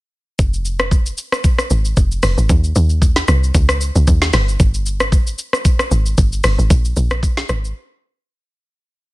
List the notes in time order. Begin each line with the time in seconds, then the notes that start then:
0.39 F1, kick, shaker
0.53 shaker
0.65 shaker
0.79 cross-stick, shaker
0.91 kick, shaker
1.06 shaker
1.18 shaker
1.32 cross-stick, shaker
1.44 kick, shaker
1.58 cross-stick, shaker
1.70 G#1, shaker
1.85 shaker
1.97 F1, kick, shaker
2.12 shaker
2.23 F1, cross-stick, open hi-hat, shaker
2.38 G#1, shaker
2.49 D#2, kick, shaker
2.64 shaker
2.75 D#2, shaker
2.90 shaker
3.02 kick, shaker
3.16 snare, shaker
3.28 C2, cross-stick, shaker
3.44 shaker
3.54 C#2, kick, shaker
3.69 cross-stick, shaker
3.81 shaker
3.95 C#2, shaker
4.07 D#2, kick, shaker
4.22 snare, shaker
4.33 G1, cross-stick, snare, open hi-hat, shaker
4.48 shaker
4.60 G1, kick, shaker
4.74 shaker
4.86 shaker
5.00 cross-stick, shaker
5.12 kick, shaker
5.27 shaker
5.38 shaker
5.53 cross-stick, shaker
5.65 kick, shaker
5.79 cross-stick, shaker
5.91 G#1, shaker
6.06 shaker
6.18 G1, kick, shaker
6.32 shaker
6.44 G1, cross-stick, open hi-hat, shaker
6.59 G#1, shaker
6.70 A#1, kick, shaker
6.85 shaker
6.96 A#1, shaker
7.11 cross-stick, shaker
7.23 kick, shaker
7.37 snare, shaker
7.49 G#1, cross-stick, shaker
7.65 shaker